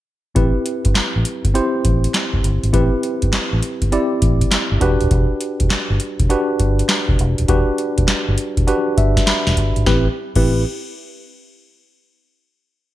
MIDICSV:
0, 0, Header, 1, 4, 480
1, 0, Start_track
1, 0, Tempo, 594059
1, 290, Time_signature, 4, 2, 24, 8
1, 10459, End_track
2, 0, Start_track
2, 0, Title_t, "Tine electric piano"
2, 0, Program_c, 0, 4
2, 285, Note_on_c, 0, 60, 82
2, 288, Note_on_c, 0, 64, 76
2, 292, Note_on_c, 0, 67, 74
2, 295, Note_on_c, 0, 71, 90
2, 426, Control_c, 0, 64, 127
2, 1191, Note_off_c, 0, 60, 0
2, 1193, Note_off_c, 0, 64, 0
2, 1195, Note_off_c, 0, 67, 0
2, 1196, Note_off_c, 0, 71, 0
2, 1245, Note_on_c, 0, 60, 83
2, 1249, Note_on_c, 0, 64, 73
2, 1251, Note_on_c, 0, 67, 78
2, 1255, Note_on_c, 0, 72, 88
2, 2151, Note_off_c, 0, 60, 0
2, 2153, Note_off_c, 0, 64, 0
2, 2154, Note_off_c, 0, 67, 0
2, 2156, Note_off_c, 0, 72, 0
2, 2206, Note_on_c, 0, 60, 81
2, 2207, Note_on_c, 0, 64, 76
2, 2211, Note_on_c, 0, 67, 76
2, 2215, Note_on_c, 0, 71, 92
2, 3112, Note_off_c, 0, 60, 0
2, 3112, Note_off_c, 0, 64, 0
2, 3114, Note_off_c, 0, 67, 0
2, 3116, Note_off_c, 0, 71, 0
2, 3166, Note_on_c, 0, 60, 80
2, 3170, Note_on_c, 0, 64, 83
2, 3172, Note_on_c, 0, 67, 76
2, 3175, Note_on_c, 0, 74, 95
2, 3880, Note_off_c, 0, 67, 0
2, 3883, Note_on_c, 0, 62, 88
2, 3887, Note_on_c, 0, 66, 80
2, 3888, Note_off_c, 0, 60, 0
2, 3890, Note_off_c, 0, 64, 0
2, 3890, Note_on_c, 0, 67, 84
2, 3892, Note_off_c, 0, 74, 0
2, 3894, Note_on_c, 0, 71, 103
2, 3900, Control_c, 0, 64, 0
2, 4026, Control_c, 0, 64, 127
2, 4790, Note_off_c, 0, 62, 0
2, 4792, Note_off_c, 0, 66, 0
2, 4794, Note_off_c, 0, 67, 0
2, 4796, Note_off_c, 0, 71, 0
2, 5088, Note_on_c, 0, 62, 87
2, 5090, Note_on_c, 0, 66, 81
2, 5094, Note_on_c, 0, 67, 81
2, 5097, Note_on_c, 0, 71, 101
2, 5993, Note_off_c, 0, 62, 0
2, 5994, Note_off_c, 0, 66, 0
2, 5996, Note_off_c, 0, 67, 0
2, 5998, Note_off_c, 0, 71, 0
2, 6046, Note_on_c, 0, 62, 79
2, 6051, Note_on_c, 0, 66, 81
2, 6054, Note_on_c, 0, 67, 78
2, 6057, Note_on_c, 0, 71, 93
2, 6952, Note_off_c, 0, 62, 0
2, 6954, Note_off_c, 0, 66, 0
2, 6956, Note_off_c, 0, 67, 0
2, 6958, Note_off_c, 0, 71, 0
2, 7007, Note_on_c, 0, 62, 82
2, 7008, Note_on_c, 0, 66, 79
2, 7012, Note_on_c, 0, 67, 75
2, 7017, Note_on_c, 0, 71, 92
2, 7252, Note_on_c, 0, 76, 72
2, 7475, Note_off_c, 0, 76, 0
2, 7495, Note_on_c, 0, 83, 68
2, 7912, Note_off_c, 0, 62, 0
2, 7913, Note_off_c, 0, 66, 0
2, 7915, Note_off_c, 0, 67, 0
2, 7917, Note_off_c, 0, 71, 0
2, 7940, Note_off_c, 0, 83, 0
2, 7972, Note_on_c, 0, 60, 84
2, 7972, Note_on_c, 0, 64, 72
2, 7973, Note_on_c, 0, 67, 80
2, 7973, Note_on_c, 0, 71, 98
2, 7979, Control_c, 0, 64, 0
2, 8132, Note_off_c, 0, 60, 0
2, 8133, Note_off_c, 0, 64, 0
2, 8133, Note_off_c, 0, 67, 0
2, 8133, Note_off_c, 0, 71, 0
2, 8372, Note_on_c, 0, 67, 73
2, 8373, Note_on_c, 0, 64, 80
2, 8374, Note_on_c, 0, 60, 77
2, 8375, Note_on_c, 0, 71, 92
2, 8593, Note_off_c, 0, 64, 0
2, 8593, Note_off_c, 0, 67, 0
2, 8594, Note_off_c, 0, 60, 0
2, 8594, Note_off_c, 0, 71, 0
2, 10459, End_track
3, 0, Start_track
3, 0, Title_t, "Fingered electric bass"
3, 0, Program_c, 1, 33
3, 293, Note_on_c, 1, 33, 95
3, 404, Note_off_c, 1, 33, 0
3, 692, Note_on_c, 1, 31, 95
3, 750, Note_off_c, 1, 31, 0
3, 936, Note_on_c, 1, 33, 89
3, 993, Note_off_c, 1, 33, 0
3, 1171, Note_on_c, 1, 31, 97
3, 1229, Note_off_c, 1, 31, 0
3, 1496, Note_on_c, 1, 33, 77
3, 1665, Note_off_c, 1, 33, 0
3, 1891, Note_on_c, 1, 31, 85
3, 1949, Note_off_c, 1, 31, 0
3, 1971, Note_on_c, 1, 31, 87
3, 2083, Note_off_c, 1, 31, 0
3, 2129, Note_on_c, 1, 32, 88
3, 2187, Note_off_c, 1, 32, 0
3, 2211, Note_on_c, 1, 33, 110
3, 2323, Note_off_c, 1, 33, 0
3, 2612, Note_on_c, 1, 31, 96
3, 2669, Note_off_c, 1, 31, 0
3, 2851, Note_on_c, 1, 33, 90
3, 2909, Note_off_c, 1, 33, 0
3, 3089, Note_on_c, 1, 31, 94
3, 3148, Note_off_c, 1, 31, 0
3, 3412, Note_on_c, 1, 33, 89
3, 3583, Note_off_c, 1, 33, 0
3, 3811, Note_on_c, 1, 31, 89
3, 3869, Note_off_c, 1, 31, 0
3, 3892, Note_on_c, 1, 28, 95
3, 4003, Note_off_c, 1, 28, 0
3, 4053, Note_on_c, 1, 27, 81
3, 4111, Note_off_c, 1, 27, 0
3, 4131, Note_on_c, 1, 28, 97
3, 4242, Note_off_c, 1, 28, 0
3, 4533, Note_on_c, 1, 28, 78
3, 4590, Note_off_c, 1, 28, 0
3, 4769, Note_on_c, 1, 31, 92
3, 4828, Note_off_c, 1, 31, 0
3, 5008, Note_on_c, 1, 28, 93
3, 5067, Note_off_c, 1, 28, 0
3, 5334, Note_on_c, 1, 31, 84
3, 5504, Note_off_c, 1, 31, 0
3, 5729, Note_on_c, 1, 28, 85
3, 5788, Note_off_c, 1, 28, 0
3, 5817, Note_on_c, 1, 28, 97
3, 5926, Note_off_c, 1, 28, 0
3, 5974, Note_on_c, 1, 27, 81
3, 6031, Note_off_c, 1, 27, 0
3, 6052, Note_on_c, 1, 28, 93
3, 6163, Note_off_c, 1, 28, 0
3, 6450, Note_on_c, 1, 28, 90
3, 6509, Note_off_c, 1, 28, 0
3, 6693, Note_on_c, 1, 31, 87
3, 6751, Note_off_c, 1, 31, 0
3, 6929, Note_on_c, 1, 28, 86
3, 6988, Note_off_c, 1, 28, 0
3, 7253, Note_on_c, 1, 31, 87
3, 7424, Note_off_c, 1, 31, 0
3, 7652, Note_on_c, 1, 28, 89
3, 7709, Note_off_c, 1, 28, 0
3, 7735, Note_on_c, 1, 31, 88
3, 7845, Note_off_c, 1, 31, 0
3, 7892, Note_on_c, 1, 32, 80
3, 7949, Note_off_c, 1, 32, 0
3, 7974, Note_on_c, 1, 33, 100
3, 8134, Note_off_c, 1, 33, 0
3, 8370, Note_on_c, 1, 33, 98
3, 8592, Note_off_c, 1, 33, 0
3, 10459, End_track
4, 0, Start_track
4, 0, Title_t, "Drums"
4, 290, Note_on_c, 9, 42, 73
4, 292, Note_on_c, 9, 36, 117
4, 371, Note_off_c, 9, 42, 0
4, 373, Note_off_c, 9, 36, 0
4, 530, Note_on_c, 9, 42, 71
4, 611, Note_off_c, 9, 42, 0
4, 685, Note_on_c, 9, 42, 54
4, 690, Note_on_c, 9, 36, 101
4, 766, Note_off_c, 9, 42, 0
4, 769, Note_on_c, 9, 42, 72
4, 770, Note_on_c, 9, 38, 111
4, 771, Note_off_c, 9, 36, 0
4, 775, Note_on_c, 9, 39, 92
4, 850, Note_off_c, 9, 42, 0
4, 851, Note_off_c, 9, 38, 0
4, 856, Note_off_c, 9, 39, 0
4, 1011, Note_on_c, 9, 42, 75
4, 1092, Note_off_c, 9, 42, 0
4, 1168, Note_on_c, 9, 36, 90
4, 1169, Note_on_c, 9, 42, 51
4, 1249, Note_off_c, 9, 36, 0
4, 1250, Note_off_c, 9, 42, 0
4, 1253, Note_on_c, 9, 42, 68
4, 1334, Note_off_c, 9, 42, 0
4, 1492, Note_on_c, 9, 42, 77
4, 1493, Note_on_c, 9, 36, 91
4, 1573, Note_off_c, 9, 42, 0
4, 1574, Note_off_c, 9, 36, 0
4, 1650, Note_on_c, 9, 42, 69
4, 1730, Note_off_c, 9, 42, 0
4, 1730, Note_on_c, 9, 42, 77
4, 1731, Note_on_c, 9, 38, 114
4, 1736, Note_on_c, 9, 39, 84
4, 1811, Note_off_c, 9, 42, 0
4, 1812, Note_off_c, 9, 38, 0
4, 1817, Note_off_c, 9, 39, 0
4, 1888, Note_on_c, 9, 36, 94
4, 1968, Note_off_c, 9, 36, 0
4, 1973, Note_on_c, 9, 42, 75
4, 2054, Note_off_c, 9, 42, 0
4, 2129, Note_on_c, 9, 42, 48
4, 2210, Note_off_c, 9, 42, 0
4, 2211, Note_on_c, 9, 36, 109
4, 2211, Note_on_c, 9, 42, 71
4, 2291, Note_off_c, 9, 36, 0
4, 2292, Note_off_c, 9, 42, 0
4, 2451, Note_on_c, 9, 42, 64
4, 2532, Note_off_c, 9, 42, 0
4, 2603, Note_on_c, 9, 42, 54
4, 2609, Note_on_c, 9, 36, 92
4, 2684, Note_off_c, 9, 42, 0
4, 2687, Note_on_c, 9, 42, 72
4, 2688, Note_on_c, 9, 38, 110
4, 2690, Note_off_c, 9, 36, 0
4, 2693, Note_on_c, 9, 39, 96
4, 2768, Note_off_c, 9, 42, 0
4, 2769, Note_off_c, 9, 38, 0
4, 2774, Note_off_c, 9, 39, 0
4, 2929, Note_on_c, 9, 42, 71
4, 3010, Note_off_c, 9, 42, 0
4, 3085, Note_on_c, 9, 42, 51
4, 3086, Note_on_c, 9, 36, 104
4, 3165, Note_off_c, 9, 42, 0
4, 3166, Note_off_c, 9, 36, 0
4, 3170, Note_on_c, 9, 42, 69
4, 3251, Note_off_c, 9, 42, 0
4, 3409, Note_on_c, 9, 42, 76
4, 3411, Note_on_c, 9, 36, 92
4, 3490, Note_off_c, 9, 42, 0
4, 3492, Note_off_c, 9, 36, 0
4, 3566, Note_on_c, 9, 36, 89
4, 3566, Note_on_c, 9, 42, 61
4, 3647, Note_off_c, 9, 36, 0
4, 3647, Note_off_c, 9, 42, 0
4, 3648, Note_on_c, 9, 38, 112
4, 3648, Note_on_c, 9, 42, 81
4, 3653, Note_on_c, 9, 39, 84
4, 3728, Note_off_c, 9, 42, 0
4, 3729, Note_off_c, 9, 38, 0
4, 3734, Note_off_c, 9, 39, 0
4, 3888, Note_on_c, 9, 42, 72
4, 3889, Note_on_c, 9, 36, 81
4, 3969, Note_off_c, 9, 42, 0
4, 3970, Note_off_c, 9, 36, 0
4, 4045, Note_on_c, 9, 42, 47
4, 4126, Note_off_c, 9, 42, 0
4, 4128, Note_on_c, 9, 42, 69
4, 4130, Note_on_c, 9, 36, 117
4, 4209, Note_off_c, 9, 42, 0
4, 4210, Note_off_c, 9, 36, 0
4, 4368, Note_on_c, 9, 42, 73
4, 4449, Note_off_c, 9, 42, 0
4, 4524, Note_on_c, 9, 42, 55
4, 4529, Note_on_c, 9, 36, 95
4, 4605, Note_off_c, 9, 42, 0
4, 4608, Note_on_c, 9, 42, 79
4, 4609, Note_on_c, 9, 38, 115
4, 4610, Note_off_c, 9, 36, 0
4, 4614, Note_on_c, 9, 39, 90
4, 4689, Note_off_c, 9, 42, 0
4, 4690, Note_off_c, 9, 38, 0
4, 4695, Note_off_c, 9, 39, 0
4, 4846, Note_on_c, 9, 42, 69
4, 4927, Note_off_c, 9, 42, 0
4, 5006, Note_on_c, 9, 42, 48
4, 5007, Note_on_c, 9, 36, 104
4, 5087, Note_off_c, 9, 36, 0
4, 5087, Note_off_c, 9, 42, 0
4, 5090, Note_on_c, 9, 42, 68
4, 5171, Note_off_c, 9, 42, 0
4, 5329, Note_on_c, 9, 42, 76
4, 5331, Note_on_c, 9, 36, 87
4, 5410, Note_off_c, 9, 42, 0
4, 5412, Note_off_c, 9, 36, 0
4, 5489, Note_on_c, 9, 42, 66
4, 5565, Note_off_c, 9, 42, 0
4, 5565, Note_on_c, 9, 42, 78
4, 5566, Note_on_c, 9, 38, 112
4, 5571, Note_on_c, 9, 39, 90
4, 5646, Note_off_c, 9, 38, 0
4, 5646, Note_off_c, 9, 42, 0
4, 5652, Note_off_c, 9, 39, 0
4, 5726, Note_on_c, 9, 36, 105
4, 5807, Note_off_c, 9, 36, 0
4, 5810, Note_on_c, 9, 42, 69
4, 5890, Note_off_c, 9, 42, 0
4, 5965, Note_on_c, 9, 42, 48
4, 6045, Note_off_c, 9, 42, 0
4, 6047, Note_on_c, 9, 42, 76
4, 6050, Note_on_c, 9, 36, 110
4, 6128, Note_off_c, 9, 42, 0
4, 6131, Note_off_c, 9, 36, 0
4, 6289, Note_on_c, 9, 42, 70
4, 6370, Note_off_c, 9, 42, 0
4, 6445, Note_on_c, 9, 42, 59
4, 6449, Note_on_c, 9, 36, 92
4, 6526, Note_off_c, 9, 42, 0
4, 6526, Note_on_c, 9, 42, 76
4, 6527, Note_on_c, 9, 38, 122
4, 6530, Note_off_c, 9, 36, 0
4, 6533, Note_on_c, 9, 39, 98
4, 6607, Note_off_c, 9, 42, 0
4, 6608, Note_off_c, 9, 38, 0
4, 6613, Note_off_c, 9, 39, 0
4, 6768, Note_on_c, 9, 42, 72
4, 6849, Note_off_c, 9, 42, 0
4, 6927, Note_on_c, 9, 36, 100
4, 6927, Note_on_c, 9, 42, 48
4, 7007, Note_off_c, 9, 36, 0
4, 7008, Note_off_c, 9, 42, 0
4, 7011, Note_on_c, 9, 42, 67
4, 7091, Note_off_c, 9, 42, 0
4, 7252, Note_on_c, 9, 36, 94
4, 7253, Note_on_c, 9, 42, 76
4, 7333, Note_off_c, 9, 36, 0
4, 7334, Note_off_c, 9, 42, 0
4, 7408, Note_on_c, 9, 36, 93
4, 7409, Note_on_c, 9, 38, 69
4, 7411, Note_on_c, 9, 42, 64
4, 7489, Note_off_c, 9, 36, 0
4, 7489, Note_off_c, 9, 42, 0
4, 7489, Note_on_c, 9, 42, 80
4, 7490, Note_off_c, 9, 38, 0
4, 7490, Note_on_c, 9, 38, 109
4, 7495, Note_on_c, 9, 39, 91
4, 7570, Note_off_c, 9, 42, 0
4, 7571, Note_off_c, 9, 38, 0
4, 7576, Note_off_c, 9, 39, 0
4, 7650, Note_on_c, 9, 38, 69
4, 7731, Note_off_c, 9, 38, 0
4, 7731, Note_on_c, 9, 36, 89
4, 7733, Note_on_c, 9, 42, 75
4, 7812, Note_off_c, 9, 36, 0
4, 7813, Note_off_c, 9, 42, 0
4, 7888, Note_on_c, 9, 42, 47
4, 7968, Note_off_c, 9, 42, 0
4, 7970, Note_on_c, 9, 38, 87
4, 7971, Note_on_c, 9, 36, 94
4, 8051, Note_off_c, 9, 38, 0
4, 8052, Note_off_c, 9, 36, 0
4, 8367, Note_on_c, 9, 49, 84
4, 8368, Note_on_c, 9, 36, 102
4, 8448, Note_off_c, 9, 49, 0
4, 8449, Note_off_c, 9, 36, 0
4, 10459, End_track
0, 0, End_of_file